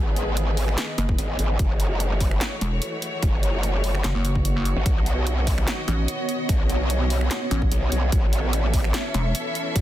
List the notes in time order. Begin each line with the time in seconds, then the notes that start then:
Already playing: G#1 D#3 B3 G#4 B4 D#5
0.16 closed hi-hat
0.37 closed hi-hat
0.57 open hi-hat
0.68 finger snap
0.78 snare, clap, closed hi-hat
0.98 F#1, closed hi-hat
1.09 kick
1.18 G#1, closed hi-hat
1.39 G#1, closed hi-hat
1.59 F#1 E3 A3 F#4 C#5, kick, closed hi-hat
1.80 closed hi-hat
2.00 C#5, closed hi-hat
2.21 kick, open hi-hat
2.31 finger snap
2.41 snare, clap, closed hi-hat
2.61 E1, closed hi-hat
2.82 closed hi-hat
3.02 closed hi-hat
3.23 F#1, kick, closed hi-hat
3.43 closed hi-hat
3.63 closed hi-hat
3.84 open hi-hat
3.95 finger snap
4.04 F#1, snare, clap, closed hi-hat
4.15 F#1
4.25 closed hi-hat
4.35 kick
4.45 closed hi-hat
4.65 closed hi-hat
4.76 G#1
4.86 B1 D#3 B3 D#5, kick, closed hi-hat
5.06 closed hi-hat
5.27 closed hi-hat
5.47 kick, open hi-hat
5.58 finger snap
5.67 snare, clap, closed hi-hat
5.88 A1, closed hi-hat
6.08 closed hi-hat
6.29 closed hi-hat
6.49 B1, kick, closed hi-hat
6.70 closed hi-hat
6.90 closed hi-hat
7.10 open hi-hat
7.21 finger snap
7.31 snare, clap, closed hi-hat
7.51 A1, closed hi-hat
7.62 kick
7.72 B1, closed hi-hat
7.92 B1, closed hi-hat
8.12 A1 E3 C#4 A4 E5, kick, closed hi-hat
8.32 E5, closed hi-hat
8.53 closed hi-hat
8.74 kick, open hi-hat
8.84 finger snap
8.94 snare, clap, closed hi-hat
9.00 B5
9.14 E1, closed hi-hat
9.35 closed hi-hat
9.55 closed hi-hat
9.76 A1, kick, closed hi-hat